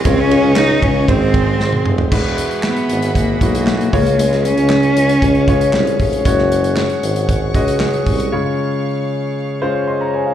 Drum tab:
CC |----------------|x---------------|----------------|----------------|
RD |x-x-x-x-x-x-----|----------------|----------------|----------------|
HH |p---------------|--xx-xxxx-xx-xox|xxxx-xxxxxxx-xox|x-xx-xxxx-xx-xox|
CP |----x-----------|----x-------x---|----x-------x---|----x-------x---|
SD |----o-------o---|----o-------o---|-o--o-------o---|-o--o-------o---|
T1 |-------------o--|----------------|----------------|----------------|
T2 |--------------o-|----------------|----------------|----------------|
FT |---------------o|----------------|----------------|----------------|
BD |o-----o-o-o-----|o-------o-o---o-|--------o-o---o-|o-------o-o---o-|

CC |----------------|
RD |----------------|
HH |----------------|
CP |----------------|
SD |----------------|
T1 |----------------|
T2 |----------------|
FT |----------------|
BD |----------------|